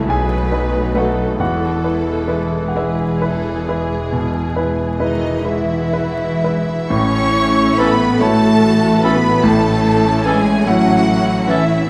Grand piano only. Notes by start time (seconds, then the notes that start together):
Already playing: C#2 A3 E4 F#4 A4 E5 F#5
0.08 B1 G#4 G#5
0.52 D#4 B4
0.94 A3 D#4 F#4 B4 F#5
1.39 E2 F#4 F#5
1.84 E4 B4
2.28 G#3 E4 B4
2.68 F#5
2.75 G#3 E4 B4 E5
3.21 E4 B4
3.68 G#3 E4 B4
4.13 B2
4.55 E4 B4
5.00 G#3 E4 B4
5.44 G#3 E4 B4
5.93 E4 B4
6.43 G#3 E4 B4
6.90 A1 A2
8.20 A3 E4 C#5
9.43 A1 A2
10.67 A3 E4 C#5